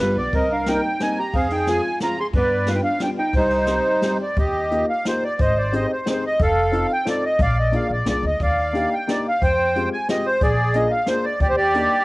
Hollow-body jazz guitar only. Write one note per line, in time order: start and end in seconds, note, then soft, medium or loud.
0.02 0.17 G3 medium
0.20 0.34 B3 medium
0.35 0.51 C4 medium
0.52 0.67 D4 medium
0.70 1.00 D#4 medium
1.03 1.18 D#4 medium
1.20 1.34 G4 medium
1.36 1.51 C4 medium
1.52 1.67 D#4 medium
1.70 2.00 F4 medium
2.03 2.18 F4 medium
2.21 2.26 G#4 medium
2.37 2.66 B3 medium
2.70 2.75 D4 medium
2.75 2.81 D#4 medium
2.83 3.00 D4 medium
3.02 3.07 D4 medium
3.19 3.34 D#4 medium
3.37 4.18 G3 medium